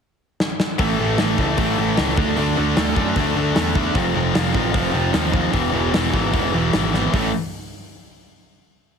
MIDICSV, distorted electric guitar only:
0, 0, Header, 1, 2, 480
1, 0, Start_track
1, 0, Tempo, 397088
1, 957, Time_signature, 4, 2, 24, 8
1, 10865, End_track
2, 0, Start_track
2, 0, Title_t, "Distorted electric guitar"
2, 0, Program_c, 0, 30
2, 950, Note_on_c, 0, 45, 76
2, 959, Note_on_c, 0, 52, 99
2, 964, Note_on_c, 0, 57, 92
2, 1187, Note_off_c, 0, 45, 0
2, 1192, Note_off_c, 0, 52, 0
2, 1202, Note_on_c, 0, 45, 83
2, 1207, Note_on_c, 0, 52, 89
2, 1216, Note_off_c, 0, 57, 0
2, 1221, Note_on_c, 0, 57, 88
2, 1427, Note_off_c, 0, 45, 0
2, 1439, Note_off_c, 0, 52, 0
2, 1441, Note_on_c, 0, 45, 95
2, 1454, Note_on_c, 0, 52, 102
2, 1460, Note_off_c, 0, 57, 0
2, 1465, Note_on_c, 0, 57, 105
2, 1673, Note_off_c, 0, 45, 0
2, 1676, Note_off_c, 0, 52, 0
2, 1687, Note_on_c, 0, 45, 84
2, 1690, Note_on_c, 0, 52, 92
2, 1693, Note_off_c, 0, 57, 0
2, 1698, Note_on_c, 0, 57, 90
2, 1896, Note_off_c, 0, 45, 0
2, 1902, Note_off_c, 0, 52, 0
2, 1910, Note_on_c, 0, 45, 90
2, 1916, Note_on_c, 0, 52, 89
2, 1924, Note_off_c, 0, 57, 0
2, 1929, Note_on_c, 0, 57, 93
2, 2120, Note_off_c, 0, 45, 0
2, 2134, Note_on_c, 0, 45, 84
2, 2138, Note_off_c, 0, 52, 0
2, 2147, Note_off_c, 0, 57, 0
2, 2152, Note_on_c, 0, 52, 105
2, 2152, Note_on_c, 0, 57, 99
2, 2355, Note_off_c, 0, 45, 0
2, 2366, Note_off_c, 0, 52, 0
2, 2370, Note_on_c, 0, 45, 80
2, 2380, Note_on_c, 0, 52, 84
2, 2386, Note_off_c, 0, 57, 0
2, 2391, Note_on_c, 0, 57, 85
2, 2605, Note_off_c, 0, 45, 0
2, 2610, Note_on_c, 0, 50, 95
2, 2611, Note_off_c, 0, 52, 0
2, 2622, Note_off_c, 0, 57, 0
2, 2622, Note_on_c, 0, 57, 102
2, 2632, Note_on_c, 0, 62, 119
2, 2843, Note_off_c, 0, 50, 0
2, 2858, Note_on_c, 0, 50, 68
2, 2861, Note_off_c, 0, 57, 0
2, 2862, Note_off_c, 0, 62, 0
2, 2866, Note_on_c, 0, 57, 77
2, 2877, Note_on_c, 0, 62, 91
2, 3078, Note_off_c, 0, 50, 0
2, 3091, Note_off_c, 0, 57, 0
2, 3091, Note_off_c, 0, 62, 0
2, 3093, Note_on_c, 0, 50, 82
2, 3096, Note_on_c, 0, 57, 85
2, 3106, Note_on_c, 0, 62, 94
2, 3326, Note_off_c, 0, 50, 0
2, 3334, Note_off_c, 0, 62, 0
2, 3339, Note_off_c, 0, 57, 0
2, 3341, Note_on_c, 0, 50, 97
2, 3343, Note_on_c, 0, 57, 113
2, 3349, Note_on_c, 0, 62, 100
2, 3536, Note_off_c, 0, 50, 0
2, 3550, Note_on_c, 0, 50, 87
2, 3555, Note_off_c, 0, 57, 0
2, 3555, Note_off_c, 0, 62, 0
2, 3560, Note_on_c, 0, 57, 87
2, 3569, Note_on_c, 0, 62, 96
2, 3800, Note_off_c, 0, 50, 0
2, 3805, Note_off_c, 0, 57, 0
2, 3814, Note_on_c, 0, 50, 93
2, 3820, Note_on_c, 0, 57, 101
2, 3822, Note_off_c, 0, 62, 0
2, 3837, Note_on_c, 0, 62, 106
2, 4037, Note_off_c, 0, 50, 0
2, 4050, Note_off_c, 0, 57, 0
2, 4052, Note_on_c, 0, 50, 95
2, 4058, Note_off_c, 0, 62, 0
2, 4064, Note_on_c, 0, 57, 94
2, 4072, Note_on_c, 0, 62, 96
2, 4254, Note_off_c, 0, 50, 0
2, 4258, Note_off_c, 0, 57, 0
2, 4268, Note_on_c, 0, 50, 86
2, 4273, Note_off_c, 0, 62, 0
2, 4273, Note_on_c, 0, 57, 88
2, 4287, Note_on_c, 0, 62, 83
2, 4508, Note_off_c, 0, 50, 0
2, 4516, Note_off_c, 0, 57, 0
2, 4522, Note_on_c, 0, 50, 88
2, 4530, Note_off_c, 0, 62, 0
2, 4530, Note_on_c, 0, 57, 93
2, 4544, Note_on_c, 0, 62, 89
2, 4757, Note_off_c, 0, 50, 0
2, 4759, Note_on_c, 0, 41, 81
2, 4761, Note_off_c, 0, 57, 0
2, 4768, Note_off_c, 0, 62, 0
2, 4772, Note_on_c, 0, 48, 84
2, 4779, Note_on_c, 0, 53, 87
2, 4989, Note_off_c, 0, 41, 0
2, 4995, Note_off_c, 0, 48, 0
2, 5003, Note_on_c, 0, 41, 91
2, 5004, Note_off_c, 0, 53, 0
2, 5009, Note_on_c, 0, 48, 87
2, 5018, Note_on_c, 0, 53, 93
2, 5218, Note_off_c, 0, 41, 0
2, 5229, Note_off_c, 0, 48, 0
2, 5232, Note_on_c, 0, 41, 103
2, 5239, Note_off_c, 0, 53, 0
2, 5243, Note_on_c, 0, 48, 118
2, 5253, Note_on_c, 0, 53, 107
2, 5450, Note_off_c, 0, 41, 0
2, 5464, Note_off_c, 0, 48, 0
2, 5464, Note_on_c, 0, 41, 91
2, 5467, Note_off_c, 0, 53, 0
2, 5479, Note_on_c, 0, 48, 85
2, 5481, Note_on_c, 0, 53, 94
2, 5680, Note_off_c, 0, 41, 0
2, 5689, Note_off_c, 0, 48, 0
2, 5695, Note_on_c, 0, 41, 93
2, 5701, Note_off_c, 0, 53, 0
2, 5703, Note_on_c, 0, 48, 94
2, 5715, Note_on_c, 0, 53, 106
2, 5917, Note_off_c, 0, 41, 0
2, 5921, Note_off_c, 0, 48, 0
2, 5929, Note_off_c, 0, 53, 0
2, 5932, Note_on_c, 0, 41, 92
2, 5936, Note_on_c, 0, 48, 93
2, 5944, Note_on_c, 0, 53, 97
2, 6166, Note_off_c, 0, 41, 0
2, 6176, Note_off_c, 0, 48, 0
2, 6180, Note_off_c, 0, 53, 0
2, 6181, Note_on_c, 0, 41, 81
2, 6191, Note_on_c, 0, 48, 85
2, 6194, Note_on_c, 0, 53, 87
2, 6412, Note_off_c, 0, 41, 0
2, 6417, Note_off_c, 0, 48, 0
2, 6424, Note_off_c, 0, 53, 0
2, 6426, Note_on_c, 0, 41, 86
2, 6432, Note_on_c, 0, 48, 96
2, 6439, Note_on_c, 0, 53, 89
2, 6659, Note_off_c, 0, 48, 0
2, 6660, Note_off_c, 0, 41, 0
2, 6664, Note_on_c, 0, 47, 87
2, 6665, Note_on_c, 0, 40, 90
2, 6669, Note_off_c, 0, 53, 0
2, 6674, Note_on_c, 0, 52, 92
2, 6882, Note_off_c, 0, 40, 0
2, 6895, Note_off_c, 0, 47, 0
2, 6896, Note_on_c, 0, 40, 79
2, 6899, Note_off_c, 0, 52, 0
2, 6909, Note_on_c, 0, 47, 88
2, 6914, Note_on_c, 0, 52, 97
2, 7124, Note_off_c, 0, 40, 0
2, 7139, Note_on_c, 0, 40, 93
2, 7140, Note_off_c, 0, 47, 0
2, 7150, Note_off_c, 0, 52, 0
2, 7154, Note_on_c, 0, 47, 102
2, 7164, Note_on_c, 0, 52, 117
2, 7363, Note_off_c, 0, 40, 0
2, 7377, Note_on_c, 0, 40, 84
2, 7385, Note_off_c, 0, 47, 0
2, 7394, Note_off_c, 0, 52, 0
2, 7399, Note_on_c, 0, 47, 92
2, 7408, Note_on_c, 0, 52, 93
2, 7613, Note_off_c, 0, 40, 0
2, 7625, Note_off_c, 0, 47, 0
2, 7627, Note_on_c, 0, 40, 85
2, 7633, Note_off_c, 0, 52, 0
2, 7640, Note_on_c, 0, 47, 88
2, 7647, Note_on_c, 0, 52, 101
2, 7879, Note_off_c, 0, 40, 0
2, 7891, Note_off_c, 0, 47, 0
2, 7893, Note_on_c, 0, 40, 91
2, 7901, Note_off_c, 0, 52, 0
2, 7905, Note_on_c, 0, 47, 94
2, 7915, Note_on_c, 0, 52, 89
2, 8113, Note_off_c, 0, 40, 0
2, 8115, Note_off_c, 0, 47, 0
2, 8127, Note_on_c, 0, 40, 72
2, 8128, Note_off_c, 0, 52, 0
2, 8129, Note_on_c, 0, 47, 84
2, 8143, Note_on_c, 0, 52, 82
2, 8362, Note_off_c, 0, 40, 0
2, 8375, Note_off_c, 0, 47, 0
2, 8377, Note_on_c, 0, 40, 88
2, 8379, Note_off_c, 0, 52, 0
2, 8390, Note_on_c, 0, 47, 90
2, 8393, Note_on_c, 0, 52, 94
2, 8602, Note_off_c, 0, 47, 0
2, 8606, Note_off_c, 0, 40, 0
2, 8607, Note_on_c, 0, 45, 78
2, 8615, Note_off_c, 0, 52, 0
2, 8627, Note_on_c, 0, 52, 80
2, 8636, Note_on_c, 0, 57, 98
2, 8808, Note_off_c, 0, 45, 0
2, 8818, Note_off_c, 0, 52, 0
2, 8823, Note_off_c, 0, 57, 0
2, 10865, End_track
0, 0, End_of_file